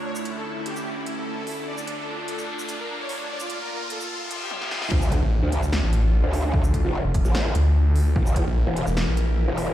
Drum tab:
CC |----------------|----------------|----------------|x---------------|
HH |--x---x---x---o-|--x---x---x---o-|-xx---x---x-----|--x---x---x---o-|
SH |-x-----x--------|-x-----x-xx-----|-x-----x--------|-x-----x--------|
SD |----------------|----------------|-------------ooo|--------o-------|
T1 |----------------|----------------|------------o---|----------------|
BD |----------------|----------------|----------------|o-o-------------|

CC |----------------|----------------|
HH |--x---x---x---o-|--x---x---x---o-|
SH |-x-----x--------|-x-----x--------|
SD |--------o-------|--------o-------|
T1 |----------------|----------------|
BD |o-o---o---------|o-o-------------|